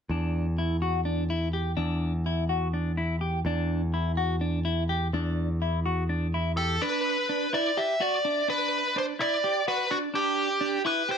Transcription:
0.09 1.75 E2 medium
0.09 0.46 D4 medium
0.58 0.76 E4 medium
0.82 1.00 F#4 medium
1.05 1.23 D4 medium
1.30 1.48 E4 medium
1.53 1.71 G4 medium
1.77 3.43 E2 medium
1.77 2.12 D4 medium
2.26 2.44 E4 medium
2.49 2.67 F#4 medium
2.74 2.91 D4 medium
2.97 3.15 E4 medium
3.21 3.39 G4 medium
3.45 5.10 E2 medium
3.45 3.81 D4 medium
3.94 4.11 E4 medium
4.17 4.35 F#4 medium
4.41 4.59 D4 medium
4.65 4.83 E4 medium
4.89 5.07 G4 medium
5.13 6.77 E2 medium
5.13 5.49 D4 medium
5.62 5.79 E4 medium
5.86 6.03 F#4 medium
6.09 6.27 D4 medium
6.34 6.51 E4 medium
6.57 6.75 G4 medium
6.57 6.82 A4 medium
6.82 7.16 D4 medium
6.82 7.54 B4 medium
7.29 7.46 D4 medium
7.53 7.70 E4 medium
7.53 7.78 D5 medium
7.77 7.94 G4 medium
7.77 8.02 E5 medium
8.00 8.18 F#4 medium
8.00 8.49 D5 medium
8.25 8.42 D4 medium
8.48 8.83 D4 medium
8.48 8.98 B4 medium
8.96 9.13 D4 medium
8.96 9.04 C5 medium
9.19 9.36 E4 medium
9.19 9.64 D5 medium
9.44 9.61 G4 medium
9.68 9.84 F#4 medium
9.68 9.89 B4 medium
9.91 10.08 D4 medium
9.91 9.97 F#4 medium
10.14 10.48 D4 medium
10.14 10.82 G4 medium
10.61 10.78 D4 medium
10.85 11.02 E4 medium
10.85 11.10 B4 medium
11.09 11.18 G4 medium
11.09 11.18 C5 medium

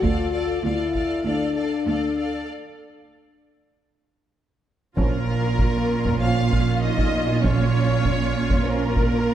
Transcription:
0.01 0.54 D2 medium
0.01 0.65 F4 medium
0.01 0.31 A4 soft
0.01 0.33 D5 soft
0.01 0.31 F5 soft
0.01 taiko medium
0.33 0.63 A4 soft
0.33 0.64 D5 soft
0.33 0.62 F5 soft
0.62 1.16 D2 medium
0.62 1.23 E4 medium
0.62 0.94 A4 soft
0.62 0.94 D5 soft
0.62 0.94 F5 soft
0.94 1.24 A4 soft
0.94 1.23 D5 soft
0.94 1.23 F5 soft
0.94 taiko soft
1.24 1.77 D2 soft
1.24 2.49 D4 medium
1.24 1.54 A4 soft
1.24 1.55 D5 soft
1.24 1.55 F5 soft
1.55 1.85 A4 soft
1.55 1.87 D5 soft
1.55 1.85 F5 soft
1.86 2.39 D2 soft
1.86 2.16 A4 soft
1.86 2.17 D5 soft
1.86 2.17 F5 soft
2.17 2.48 A4 soft
2.17 2.49 D5 soft
2.17 2.49 F5 soft
4.97 9.34 A#1 soft
4.97 9.34 A#2 medium
4.97 5.19 F3 soft
4.97 6.18 A#3 medium
4.97 5.19 C#4 soft
4.97 9.34 C#4 soft
4.97 9.34 F4 medium
4.97 6.18 A#4 medium
4.97 taiko medium
5.59 taiko medium
6.05 taiko medium
6.20 6.42 F3 soft
6.20 6.42 C#4 soft
6.20 6.81 F4 medium
6.20 6.83 F5 medium
6.20 6.84 F5 medium
6.51 taiko medium
6.82 7.43 D#4 medium
6.82 7.42 D#5 medium
6.82 7.43 D#5 medium
6.97 taiko medium
7.41 7.64 F3 medium
7.41 7.63 C#4 soft
7.41 8.63 C#4 medium
7.41 8.66 C#5 medium
7.41 8.63 C#5 medium
7.41 taiko medium
8.05 taiko medium
8.50 taiko medium
8.65 8.87 F3 soft
8.65 9.34 A#3 medium
8.65 8.87 C#4 medium
8.65 9.34 A#4 medium
8.96 taiko medium

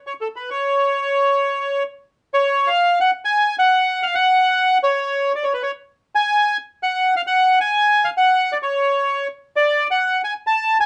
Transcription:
0.07 0.13 C#5 medium
0.21 0.28 A4 medium
0.36 0.50 B4 medium
0.50 1.83 C#5 medium
2.34 2.69 C#5 loud
2.67 2.99 F5 loud
3.01 3.11 F#5 loud
3.25 3.56 G#5 loud
3.59 4.05 F#5 loud
4.03 4.15 F5 medium
4.15 4.78 F#5 loud
4.83 5.32 C#5 medium
5.35 5.44 D5 medium
5.44 5.53 C#5 medium
5.54 5.62 B4 medium
5.63 5.71 C#5 medium
6.15 6.57 G#5 loud
6.83 7.14 F#5 loud
7.16 7.22 F5 loud
7.27 7.59 F#5 loud
7.61 8.08 G#5 loud
8.04 8.10 F5 loud
8.17 8.53 F#5 loud
8.52 8.57 D5 medium
8.63 9.27 C#5 medium
9.56 9.87 D5 loud
9.91 10.21 F#5 loud
10.24 10.34 G#5 medium
10.47 10.78 A5 loud
10.80 10.86 G#5 loud

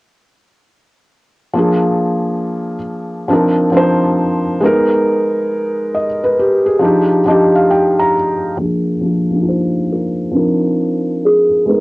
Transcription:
1.53 2.74 F3 medium
1.53 2.75 A#3 medium
1.53 2.76 D4 medium
1.59 2.77 G#4 medium
3.28 3.67 F3 medium
3.28 3.67 C4 medium
3.28 3.68 D4 medium
3.28 3.68 D#4 medium
3.33 3.69 A#4 medium
3.72 4.61 F3 medium
3.72 4.61 C4 medium
3.72 4.62 D4 medium
3.72 4.62 D#4 medium
3.77 4.63 C5 medium
4.60 6.05 G#3 medium
4.60 6.06 B3 medium
4.60 6.06 D#4 medium
4.66 5.96 A#4 loud
5.95 6.21 D#5 medium
6.24 6.39 B4 medium
6.39 6.65 G4 medium
6.66 7.08 G#4 medium
6.79 7.19 F3 medium
6.79 7.19 D4 medium
6.79 7.20 D#4 medium
6.84 7.21 G4 medium
7.26 8.14 F3 medium
7.26 8.15 D4 medium
7.26 8.16 D#4 medium
7.26 7.53 D#5 medium
7.30 8.16 G4 medium
7.55 7.70 F5 medium
7.71 7.97 G5 medium
8.00 8.56 A#5 medium
8.57 8.91 F3 medium
8.57 8.92 A#3 medium
8.57 8.93 D4 medium
8.57 9.51 A#4 medium
8.62 8.94 G#4 medium
9.01 9.20 F3 medium
9.01 9.21 A#3 medium
9.01 9.22 D4 medium
9.06 9.23 F4 medium
9.30 10.30 F3 medium
9.30 10.36 A#3 medium
9.30 10.32 D4 medium
9.35 9.38 D#4 soft
9.42 10.41 F4 medium
9.48 9.93 C5 medium
9.92 10.76 A#4 medium
10.31 11.44 F3 medium
10.31 11.45 C4 medium
10.31 11.45 D4 medium
10.31 11.46 D#4 medium
10.36 11.46 A#4 medium
11.25 11.80 G#4 loud
11.66 11.80 G#3 medium
11.66 11.80 B3 medium
11.66 11.80 D#4 medium
11.71 11.80 A#4 medium

